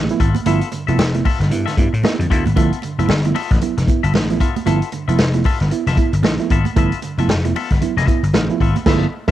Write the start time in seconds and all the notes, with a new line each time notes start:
0.09 F3 A3 B3 E4, closed hi-hat
0.20 G#1 B3 E4 F4 A4 E5, kick, closed hi-hat
0.35 muted clean electric guitar stroke, closed hi-hat, high conga
0.46 G1 F3 A3 B3 E4 F4 A4 E5, closed hi-hat, muted conga
0.61 closed hi-hat
0.72 G2 D3, muted clean electric guitar stroke, closed hi-hat, muted conga
0.87 F1 F3 A3 B3 E4 F4 A4 E5, closed hi-hat
0.98 F1, snare, high conga
1.14 F3 A3 B3 E4, muted clean electric guitar stroke, closed hi-hat
1.25 B3 F4 A4 E5, kick, open hi-hat, muted conga
1.40 G1 G2 D3, muted clean electric guitar stroke, snare, closed hi-hat
1.51 G2 B3 E4, muted clean electric guitar stroke, closed hi-hat
1.66 G2 D3 B3 F4 A4 E5, snare, closed hi-hat
1.76 G2 B3 E4, muted clean electric guitar stroke, kick, closed hi-hat, muted conga
1.93 A2, muted clean electric guitar stroke, closed hi-hat
2.03 B3 E4, muted clean electric guitar stroke, snare, high conga
2.19 F2 G2 D3, closed hi-hat
2.30 D2 B3 E4 F4 A4 E5, kick, closed hi-hat
2.46 G#1, muted clean electric guitar stroke, closed hi-hat, high conga
2.56 G1 F3 A3 B3 E4 F4 A4 E5, kick, closed hi-hat, muted conga
2.73 closed hi-hat
2.82 G2 D3, muted clean electric guitar stroke, closed hi-hat, muted conga
2.98 F1 F3 A3 B3 E4 F4 A4 E5, closed hi-hat
3.09 G1, snare, high conga
3.24 F3 A3 B3 E4, muted clean electric guitar stroke, closed hi-hat
3.35 B3 F4 A4 E5, open hi-hat, muted conga
3.51 A1 G2 D3, muted clean electric guitar stroke, kick, snare, closed hi-hat
3.61 B3 E4, muted clean electric guitar stroke, closed hi-hat, low conga
3.77 F1 G2 D3, muted clean electric guitar stroke, snare, closed hi-hat
3.87 B3 E4, kick, closed hi-hat, muted conga
4.03 G1 B3 F4 A4 E5, closed hi-hat
4.13 A1 G2 D3, muted clean electric guitar stroke, snare, high conga
4.30 F3 A3 B3 E4, closed hi-hat
4.40 B3 E4 F4 A4 E5, kick, closed hi-hat
4.56 muted clean electric guitar stroke, closed hi-hat, high conga
4.66 G1 F3 A3 B3 E4 F4 A4 E5, closed hi-hat, muted conga
4.82 closed hi-hat
4.92 G2 D3, muted clean electric guitar stroke, closed hi-hat, muted conga
5.08 F1 F3 A3 B3 E4 F4 A4 E5, closed hi-hat
5.19 F1, snare, high conga
5.33 F3 A3 B3 E4, muted clean electric guitar stroke, closed hi-hat
5.44 B3 F4 A4 E5, kick, open hi-hat, muted conga
5.60 G1 G2 D3, muted clean electric guitar stroke, snare, closed hi-hat
5.71 B3 E4, muted clean electric guitar stroke, closed hi-hat
5.86 F1 G2 D3 B3 F4 A4 E5, snare, closed hi-hat
5.97 B3 E4, muted clean electric guitar stroke, kick, closed hi-hat, muted conga
6.13 G1, muted clean electric guitar stroke, closed hi-hat
6.22 A1 G2 D3, muted clean electric guitar stroke, snare, high conga
6.39 F3 A3 B3 E4, closed hi-hat
6.50 G#1 B3 E4 F4 A4 E5, kick, closed hi-hat
6.65 muted clean electric guitar stroke, closed hi-hat, high conga
6.76 G1 F3 A3 B3 E4 F4 A4 E5, kick, closed hi-hat, muted conga
6.92 closed hi-hat
7.02 G2 D3, muted clean electric guitar stroke, closed hi-hat, muted conga
7.17 F1 F3 A3 B3 E4 F4 A4 E5, closed hi-hat
7.28 F1, snare, high conga
7.45 F3 A3 B3 E4, muted clean electric guitar stroke, closed hi-hat
7.56 B3 F4 A4 E5, open hi-hat, muted conga
7.70 G1 G2 D3, muted clean electric guitar stroke, kick, snare, closed hi-hat
7.81 B3 E4, muted clean electric guitar stroke, closed hi-hat, low conga
7.96 F1 G2 D3 B3 F4 A4 E5, snare, closed hi-hat
8.07 B3 E4, muted clean electric guitar stroke, kick, closed hi-hat, muted conga
8.23 G1, muted clean electric guitar stroke, closed hi-hat
8.33 A1 G2 D3, muted clean electric guitar stroke, snare, high conga
8.49 F3 A3 B3 E4, closed hi-hat
8.60 G#1 B3 F4 A4 E5, kick, closed hi-hat
8.76 muted clean electric guitar stroke, closed hi-hat, high conga
8.86 G1 F3 A3 B3 E4 F4 A4 E5, kick, snare, crash
9.27 G1 F3 A3 B3 E4, kick, snare